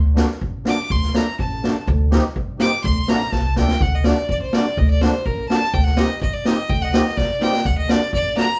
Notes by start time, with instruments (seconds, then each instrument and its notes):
Already playing: upright bass D2
0.15 accordion A3 D4 F#4, snare
0.29 snare
0.41 upright bass A1, kick
0.65 accordion A3 D4 F#4, violin D6, snare
0.90 upright bass D2, violin C6, kick
1.03 snare
1.14 accordion A3 D4 A4, violin A#5, snare
1.39 upright bass A1, violin A5, kick
1.63 accordion A3 D4 F#4, snare
1.87 upright bass D2, kick
2.11 accordion C4 D#4 G4, snare
2.36 upright bass G2, kick
2.59 accordion C4 D#4 G4, violin D6, snare
2.84 upright bass D2, violin C6, kick
3.08 upright bass A1, accordion A3 D4 F#4, violin A#5, snare
3.21 snare
3.32 upright bass C2, violin A5, kick, snare
3.56 upright bass D2, accordion A3 D4 A4, violin G5, snare
3.68 snare
3.81 upright bass D2, violin F#5, kick
3.95 violin D#5
4.04 accordion A3 D4 F#4, violin D5, snare
4.29 upright bass A1, violin D5, kick
4.41 violin C5
4.53 accordion A3 D4 F#4, violin D5, snare
4.77 upright bass D2, violin D#5, kick
4.90 violin D5
5.01 accordion A3 D4 F#4, violin C5, snare
5.25 upright bass A1, violin A#4, kick
5.49 accordion A3 D4 F#4, violin A5, snare
5.74 upright bass D2, violin G5, kick
5.84 violin F#5, snare
5.97 accordion C4 D#4 G4, violin D#5, snare
6.21 upright bass G2, violin D#5, kick
6.33 violin D5
6.45 accordion C4 D#4 G4, violin D#5, snare
6.69 upright bass D2, violin G5, kick
6.82 violin D#5 F#5
6.87 violin F#5
6.92 accordion C4 D#4 G4, violin D#5, snare
7.06 snare
7.17 upright bass G2, violin D5, kick, snare
7.40 accordion C4 D#4 G4, violin G5, snare
7.53 snare
7.65 upright bass D2, violin F#5, kick
7.78 violin D#5
7.88 accordion A3 D4 F#4, violin D5, snare
8.13 upright bass A1, violin D5, kick
8.35 accordion A3 D4 F#4, violin A#5, snare